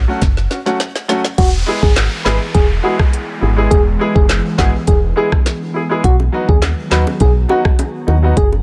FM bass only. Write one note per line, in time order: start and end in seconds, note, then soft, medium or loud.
0.22 0.47 F#1 loud
1.38 1.63 E1 loud
1.83 2.08 G#1 medium
2.26 2.39 G#1 medium
2.55 2.80 E1 loud
3.42 3.67 G#1 medium
3.71 3.97 E1 loud
4.16 4.41 F#1 medium
4.58 4.72 G#1 medium
4.88 5.13 E1 loud
6.04 6.29 B1 loud
6.49 6.74 D#2 medium
6.92 7.05 D#2 medium
7.21 7.46 B1 loud
8.08 8.33 D#2 medium
8.37 8.62 F#1 loud